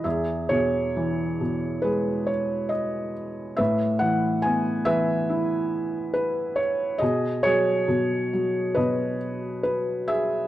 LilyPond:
<<
  \new Staff \with { instrumentName = "Felt piano" } { \time 4/4 \key e \major \tempo 4 = 69 << { e''8 cis''4. b'8 cis''8 dis''4 | e''8 fis''8 gis''8 e''4. b'8 cis''8 | dis''8 cis''4. b'4 b'8 e''8 | } \\ { gis'8 gis'4. gis'2 | b'4. b'2 r8 | gis'8 gis'4. dis''4. gis'8 | } >> }
  \new Staff \with { instrumentName = "Felt piano" } { \clef bass \time 4/4 \key e \major e,8 b,8 e8 b,8 gis2 | a,8 e8 b8 e8 e'2 | b,8 fis8 b,8 fis8 b,2 | }
>>